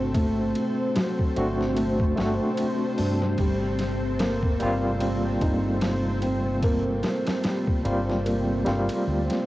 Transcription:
0.00 0.52 G1 loud
0.00 1.31 A3 medium
0.00 9.46 A3 medium
0.00 1.32 C4 medium
0.00 2.17 C4 medium
0.00 9.46 C4 medium
0.00 1.33 D4 medium
0.00 2.98 D4 medium
0.00 1.33 F#4 medium
0.00 9.46 A4 medium
0.00 9.46 C5 medium
0.14 0.53 A3 loud
0.14 kick loud
0.14 ride medium
0.55 ride medium
0.95 1.34 F#3 medium
0.95 snare loud
0.95 ride medium
1.19 kick medium
1.36 2.14 G1 medium
1.36 2.13 A3 medium
1.36 2.13 C4 medium
1.36 2.14 D4 medium
1.36 2.14 F#4 medium
1.36 ride medium
1.61 snare soft
1.76 2.14 A3 medium
1.76 ride medium
2.00 kick medium
2.16 2.38 G1 medium
2.16 3.36 A3 medium
2.16 2.56 C4 medium
2.16 3.37 C4 medium
2.16 3.37 D4 medium
2.16 3.38 F#4 medium
2.16 snare loud
2.16 ride medium
2.57 ride medium
2.98 3.35 G2 medium
2.98 3.35 D4 medium
2.98 open hi-hat medium
3.22 snare soft
3.38 4.57 G1 medium
3.38 3.78 G3 medium
3.38 kick loud
3.38 ride medium
3.79 snare soft
3.79 ride medium
4.19 4.59 A#3 loud
4.19 snare loud
4.19 ride medium
4.43 kick medium
4.60 5.39 G1 medium
4.60 7.80 G3 medium
4.60 7.81 A#3 medium
4.60 7.81 C4 medium
4.60 7.82 F4 loud
4.60 ride medium
5.00 5.40 C4 loud
5.00 ride medium
5.41 7.00 G1 loud
5.41 5.80 D#4 medium
5.41 kick medium
5.41 ride medium
5.81 snare loud
5.81 ride medium
6.22 6.60 C4 medium
6.22 ride medium
6.63 7.02 A#3 loud
6.63 kick loud
6.63 ride medium
7.03 snare loud
7.03 ride medium
7.27 snare loud
7.27 ride medium
7.44 7.83 G3 medium
7.44 snare loud
7.44 ride medium
7.67 kick loud
7.85 8.63 G1 medium
7.85 8.62 G3 medium
7.85 8.62 A#3 medium
7.85 8.62 C4 medium
7.85 8.62 F4 medium
7.85 ride medium
8.10 snare soft
8.25 8.62 A#3 medium
8.25 ride medium
8.64 8.87 G1 loud
8.64 9.46 G3 medium
8.64 9.46 A#3 medium
8.64 9.05 C4 medium
8.64 9.46 C4 medium
8.64 9.46 F4 medium
8.64 snare soft
8.64 ride medium
8.89 ride medium
9.07 9.27 D2 medium
9.30 snare soft
9.30 ride medium

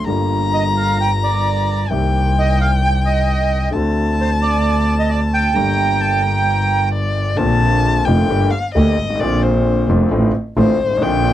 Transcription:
0.06 1.81 G1 medium
0.06 1.81 G2 medium
0.06 1.81 D3 medium
0.06 1.81 G3 soft
0.06 1.82 A#3 soft
0.06 1.82 F4 medium
0.06 1.91 A#5 loud
0.54 0.64 D#5 medium
0.77 0.98 F5 medium
1.01 1.11 G5 medium
1.24 1.87 D5 medium
1.89 3.64 C2 medium
1.89 3.64 C3 medium
1.89 3.63 D#3 soft
1.89 3.64 A#3 soft
1.89 3.65 C4 soft
1.89 3.65 G4 medium
1.89 3.74 G5 medium
2.39 2.59 D#5 medium
2.61 2.71 F5 medium
2.84 2.93 G5 medium
3.06 3.69 D#5 medium
3.71 5.46 D2 medium
3.71 5.46 D3 medium
3.71 5.45 A3 soft
3.71 5.46 C4 soft
3.71 5.57 A5 medium
3.75 5.47 F#4 medium
4.21 4.31 C5 medium
4.42 4.95 D5 medium
4.99 5.10 D#5 medium
5.10 5.20 D5 medium
5.34 6.89 G5 medium
5.53 7.30 G1 medium
5.53 7.30 G2 medium
5.53 7.29 D3 soft
5.53 7.29 G3 soft
5.53 7.30 A#3 soft
5.53 6.02 A#5 medium
5.57 7.31 G4 medium
6.01 6.24 A5 medium
6.23 6.92 A#5 medium
6.92 7.39 D5 medium
7.36 8.04 A#1 medium
7.36 8.04 A#2 medium
7.36 8.03 D3 medium
7.36 8.04 A#3 medium
7.36 8.04 C4 medium
7.36 8.06 A5 loud
7.41 8.05 F4 medium
8.04 8.26 F1 medium
8.04 8.26 F2 medium
8.04 8.26 D3 medium
8.04 8.26 A#3 medium
8.04 8.26 C4 medium
8.04 8.27 F4 medium
8.04 8.52 G5 loud
8.29 8.48 G1 medium
8.29 8.49 G1 medium
8.29 8.49 G2 medium
8.29 8.49 D3 medium
8.29 8.49 A3 medium
8.29 8.49 A#3 medium
8.29 8.49 G4 medium
8.50 8.73 F5 medium
8.74 8.94 D2 medium
8.74 8.95 D2 medium
8.74 8.95 D3 medium
8.74 8.94 A3 medium
8.74 8.94 A#3 medium
8.74 8.95 G4 medium
8.74 9.21 D#5 medium
8.99 9.20 G#1 medium
9.04 9.09 G1 soft
9.10 9.15 G#1 medium
9.15 9.21 A1 medium
9.19 9.85 A#1 medium
9.19 9.85 A#2 medium
9.19 9.84 D3 medium
9.19 9.85 A#3 medium
9.19 9.86 C4 medium
9.19 9.44 D5 medium
9.23 9.87 F4 medium
9.42 9.88 C5 medium
9.89 10.08 F1 medium
9.89 10.08 F2 medium
9.89 10.08 D3 medium
9.89 10.08 A#3 medium
9.89 10.08 C4 medium
9.89 10.08 F4 medium
10.11 10.30 A1 medium
10.11 10.30 A2 medium
10.11 10.30 D3 medium
10.11 10.30 A3 medium
10.11 10.31 C4 medium
10.11 10.31 F4 medium
10.57 10.76 A1 loud
10.57 10.76 A1 medium
10.57 10.76 A2 medium
10.57 10.76 D3 medium
10.57 10.76 A3 medium
10.57 10.76 C4 medium
10.57 10.76 F4 medium
10.57 11.04 C5 medium
10.79 11.01 G#1 medium
10.86 10.91 G1 medium
10.91 10.96 G#1 medium
10.97 11.02 A1 medium
10.97 11.33 D3 medium
11.01 11.33 A#1 loud
11.01 11.33 A#1 medium
11.01 11.33 A#2 medium
11.01 11.33 A#3 medium
11.01 11.33 C4 medium
11.01 11.33 F4 medium
11.01 11.33 G5 loud

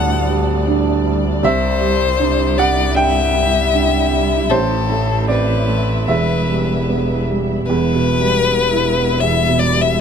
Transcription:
0.00 1.45 D2 medium
0.00 1.46 D2 medium
0.00 0.53 A2 medium
0.00 0.30 G3 medium
0.00 1.43 G3 medium
0.00 0.67 D4 medium
0.00 1.44 D4 medium
0.00 4.51 D5 medium
0.00 0.68 F#5 loud
0.00 0.65 A5 loud
0.00 1.47 B5 loud
0.30 0.91 G3 medium
0.67 1.28 D4 medium
1.06 1.44 G3 medium
1.43 2.92 C2 medium
1.43 4.52 C2 medium
1.43 4.47 G3 medium
1.43 7.68 E4 medium
1.43 2.59 C5 loud
1.43 2.55 E5 loud
1.81 2.43 G3 medium
2.19 2.81 D4 medium
2.57 3.19 G3 medium
2.57 2.97 D5 loud
2.57 2.95 F#5 loud
2.95 3.57 G2 medium
2.95 4.51 E5 loud
2.95 4.47 G5 loud
3.34 3.96 G3 medium
3.73 4.35 D4 medium
4.11 4.50 G3 medium
4.50 6.04 A1 medium
4.50 6.10 A1 medium
4.50 6.08 E3 medium
4.50 5.28 A4 medium
4.50 5.25 C5 loud
4.50 7.67 E5 medium
4.90 5.52 A3 medium
5.28 5.92 C4 medium
5.28 6.06 B4 medium
5.28 6.04 D5 medium
5.68 6.08 A3 medium
6.06 7.68 E1 medium
6.06 7.65 E2 medium
6.06 7.67 G3 medium
6.06 7.26 B4 medium
6.06 7.25 E5 medium
6.49 7.13 G3 medium
6.89 7.53 B3 medium
7.30 7.69 G3 medium
7.66 10.01 E1 medium
7.66 9.19 E2 medium
7.66 10.01 G3 medium
7.66 10.01 E4 medium
7.66 9.22 B4 loud
7.66 10.01 E5 medium
7.95 8.36 B2 medium
8.20 8.61 G3 medium
8.47 8.88 B3 medium
8.72 9.13 E4 medium
8.97 9.38 B3 medium
9.20 10.01 E2 medium
9.20 9.61 E5 loud
9.49 9.89 B2 medium
9.59 9.83 D5 loud
9.75 10.01 G3 medium
9.81 10.01 E5 medium

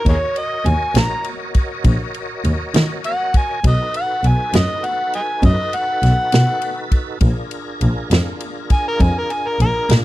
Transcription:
0.05 0.14 D#2 medium
0.05 3.60 F#4 medium
0.05 0.17 G#4 medium
0.05 3.60 A#4 medium
0.05 0.17 A#4 medium
0.05 3.60 C#5 medium
0.05 0.40 C#5 medium
0.05 3.60 D#5 medium
0.05 kick loud
0.05 ride medium
0.36 0.69 D#5 medium
0.36 ride medium
0.65 0.73 D#2 medium
0.65 1.00 G#5 medium
0.65 ride medium
0.95 1.03 A#1 medium
0.95 1.26 A#5 medium
0.95 snare loud
0.95 ride medium
1.24 ride medium
1.54 kick medium
1.54 ride medium
1.84 1.93 A#1 loud
1.84 kick loud
1.84 ride medium
2.14 ride medium
2.45 2.53 D#2 medium
2.45 ride medium
2.74 2.82 D#3 medium
2.74 snare loud
2.74 ride medium
3.04 3.34 F#5 loud
3.04 ride medium
3.34 3.65 G#5 medium
3.34 kick medium
3.34 ride medium
3.64 3.72 B1 medium
3.64 7.19 D#4 medium
3.64 7.19 F#4 medium
3.64 7.19 A4 medium
3.64 7.19 B4 medium
3.64 3.95 D#5 medium
3.64 kick loud
3.64 ride medium
3.94 4.28 F#5 medium
3.94 ride medium
4.24 4.32 B1 medium
4.24 4.58 G#5 medium
4.24 ride medium
4.53 4.62 F#2 medium
4.53 4.87 D#5 medium
4.53 snare loud
4.53 ride medium
4.84 5.14 F#5 medium
4.84 ride medium
5.13 5.21 D#5 medium
5.13 5.43 G#5 medium
5.13 ride medium
5.43 5.51 F#2 loud
5.43 5.77 D#5 medium
5.43 kick loud
5.43 ride medium
5.73 6.90 F#5 loud
5.73 ride medium
6.03 6.11 B1 medium
6.03 snare soft
6.03 ride medium
6.32 6.41 B2 medium
6.32 snare loud
6.32 ride medium
6.62 ride medium
6.92 kick medium
6.92 ride medium
7.20 7.29 A#1 medium
7.20 10.05 D4 medium
7.20 10.05 F4 medium
7.20 10.05 G#4 medium
7.20 10.05 A#4 medium
7.20 kick loud
7.20 ride medium
7.51 ride medium
7.81 7.89 A#1 medium
7.81 ride medium
8.11 8.19 F2 medium
8.11 snare loud
8.11 ride medium
8.40 ride medium
8.70 8.86 G#5 loud
8.70 kick medium
8.70 ride medium
8.88 9.04 A#4 loud
9.00 9.08 F2 medium
9.00 9.16 G#5 medium
9.00 kick loud
9.00 ride medium
9.18 9.34 A#4 medium
9.30 9.49 G#5 medium
9.30 ride medium
9.48 9.60 A#4 medium
9.59 9.67 A#1 medium
9.59 9.90 A#4 loud
9.59 ride medium
9.89 9.97 A#2 medium
9.89 snare loud
9.89 ride medium

